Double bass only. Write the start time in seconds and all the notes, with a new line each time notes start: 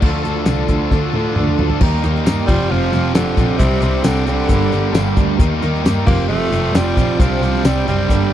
0.02 D2
0.24 D2
0.47 C2
0.68 D2
0.91 D2
1.14 A2
1.37 D2
1.59 D2
1.81 D#2
2.04 D#2
2.26 G2
2.48 F1
2.71 F1
2.93 F1
3.15 F1
3.37 A#1
3.60 C2
3.81 C2
4.03 C2
4.26 C2
4.49 G1
4.71 G1
4.93 G1
5.17 D2
5.39 D#2
5.62 D#2
5.84 G2
6.07 F1
6.28 F1
6.51 F1
6.72 F1
6.97 A#1
7.19 C2
7.41 C2
7.64 C2
7.85 F#1
8.09 G1
8.30 G1